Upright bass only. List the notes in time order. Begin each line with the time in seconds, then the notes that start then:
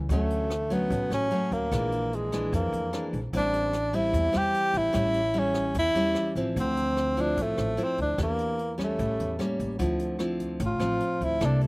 0.09 D2
0.90 A1
1.10 A1
1.51 D2
1.72 A#1
2.53 F2
2.73 F2
3.13 A#1
3.33 A1
4.13 E2
4.35 E2
4.74 A1
4.94 A1
5.75 E2
5.95 E2
6.35 A1
6.56 D2
7.37 A1
7.58 A1
7.98 D2
8.18 E2
8.99 A1
9.20 E2
9.60 A1
9.79 D2
10.60 A1
10.79 A1
11.21 D2
11.41 C2